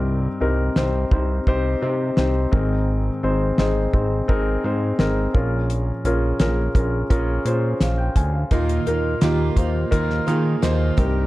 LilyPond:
<<
  \new Staff \with { instrumentName = "Grand piano" } { \time 4/4 \key ees \mixolydian \tempo 4 = 85 << { r1 | r1 | r2. f''16 g''16 aes''16 f''16~ | f''16 r2. r8. | } \\ { <c' ees' g' bes'>8 <c' ees' g' bes'>8 <c' ees' g' c''>8 <c' ees' g' c''>8 <c' ees' g' c''>8 <c' ees' g' c''>8 <c' ees' g' c''>8 <c' ees' aes' bes'>8~ | <c' ees' aes' bes'>8 <c' ees' aes' c''>8 <c' ees' aes' c''>8 <c' ees' aes' c''>8 <c' ees' aes' bes'>8 <c' ees' aes' c''>8 <c' ees' aes' bes'>8 <des' f' aes' bes'>8~ | <des' f' aes' bes'>8 <des' f' aes' bes'>8 <des' f' aes' bes'>8 <des' f' aes' bes'>8 <des' f' aes' bes'>8 <des' f' aes' c''>8 r4 | <bes ees' f' bes'>8 <bes ees' f' bes'>8 <bes ees' f' g'>8 <bes ees' f' c''>8 <bes ees' f' bes'>8 <bes ees' f' aes'>8 <bes ees' f' c''>8 <c' ees' g' bes'>8 | } >> }
  \new Staff \with { instrumentName = "Grand piano" } { \clef bass \time 4/4 \key ees \mixolydian g,4 r2 r8 <aes, ees>8~ | <aes, ees>4 r2 r8 <bes, f>8~ | <bes, f>4 r2. | bes,4. r2 g,8 | }
  \new Staff \with { instrumentName = "Steel-string acoustic guitar" } { \time 4/4 \key ees \mixolydian r1 | r1 | r1 | <ees bes ees' f'>8 <bes ees' f'>8 <ees bes ees' f'>8 <bes ees' f'>8 <ees bes ees' f'>8 <bes ees' f'>8 <ees bes ees' f'>8 <bes ees' g'>8 | }
  \new Staff \with { instrumentName = "Analog synth bass" } { \clef bass \time 4/4 \key ees \mixolydian c,8 c,8 c,8 c,8 c,8 c8 c,8 aes,,8~ | aes,,8 aes,,8 aes,,8 aes,,8 aes,,8 aes,8 aes,,8 bes,,8~ | bes,,8 bes,,8 bes,,8 bes,,8 bes,,8 bes,8 bes,,8 d,8 | ees,8 ees,8 ees,8 ees,8 ees,8 ees8 ees,8 c,8 | }
  \new DrumStaff \with { instrumentName = "Drums" } \drummode { \time 4/4 r4 sn8 bd8 bd4 sn8 bd8 | r4 sn8 bd8 bd4 sn8 bd8 | hh8 hh8 <hh sn>8 <hh bd>8 <hh bd>8 hh8 <hh sn>8 <hh bd>8 | <hh bd>16 hh16 hh8 <hh sn>8 <hh bd>8 <hh bd>16 sn16 hh8 <hh sn>8 <hh bd>8 | }
>>